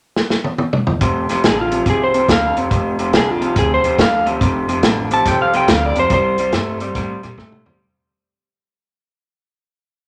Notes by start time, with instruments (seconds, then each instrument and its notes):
0.16 snare
0.30 snare
0.44 high tom
0.58 high tom
0.73 mid tom
0.87 floor tom
1.01 upright bass F1, clean electric guitar F2 C3, kick, closed hi-hat
1.29 clean electric guitar F2 C3, snare, closed hi-hat
1.43 upright bass A1, clean electric guitar F2 D3, lead electric guitar G#4, snare, closed hi-hat
1.61 lead electric guitar F4
1.71 clean electric guitar F2 C3, closed hi-hat
1.86 upright bass C2, clean electric guitar F2 C3, lead electric guitar G#4, kick, closed hi-hat
2.04 lead electric guitar C5
2.14 clean electric guitar F2 C3, closed hi-hat
2.28 upright bass D2, clean electric guitar F2 D3, lead electric guitar F5, kick, snare, closed hi-hat
2.56 upright bass F2, clean electric guitar F2 C3, closed hi-hat
2.71 upright bass F1, clean electric guitar F2 C3, kick, closed hi-hat
2.99 clean electric guitar F2 C3, closed hi-hat
3.13 upright bass C2, clean electric guitar F2 D3, lead electric guitar G#4, snare, closed hi-hat
3.31 lead electric guitar F4
3.41 clean electric guitar F2 C3, closed hi-hat
3.56 upright bass D2, clean electric guitar F2 C3, lead electric guitar G#4, kick, closed hi-hat
3.74 lead electric guitar C5
3.84 upright bass D#2, clean electric guitar F2 C3, closed hi-hat
3.98 upright bass D2, clean electric guitar F2 D3, lead electric guitar F5, kick, snare, closed hi-hat
4.26 clean electric guitar F2 C3, closed hi-hat
4.41 upright bass F1, clean electric guitar F2 C3, kick, closed hi-hat
4.68 clean electric guitar F2 C3, closed hi-hat
4.83 upright bass A1, clean electric guitar F2 D3, snare, closed hi-hat
5.11 clean electric guitar F2 C3, lead electric guitar A5, closed hi-hat
5.26 upright bass C2, clean electric guitar F2 C3, lead electric guitar G5, kick, snare, closed hi-hat
5.42 lead electric guitar F5
5.53 clean electric guitar F2 C3, lead electric guitar G5, closed hi-hat
5.68 upright bass D2, clean electric guitar F2 D3, lead electric guitar F5, kick, snare, closed hi-hat
5.86 lead electric guitar D5
5.95 clean electric guitar F2 C3, upright bass F2, lead electric guitar C5, closed hi-hat
6.10 upright bass C2, clean electric guitar C3 G3, lead electric guitar C5, kick, closed hi-hat
6.38 clean electric guitar C3 G3, closed hi-hat
6.52 upright bass G2, clean electric guitar C3 A3, snare, closed hi-hat
6.80 clean electric guitar C3 G3, closed hi-hat
6.95 upright bass A2, clean electric guitar C3 G3, kick, snare, closed hi-hat
7.23 upright bass A#2, clean electric guitar C3 G3, snare, closed hi-hat
7.38 upright bass A2, clean electric guitar C3 A3, kick, snare
7.52 mid tom
7.65 clean electric guitar C3 G3, floor tom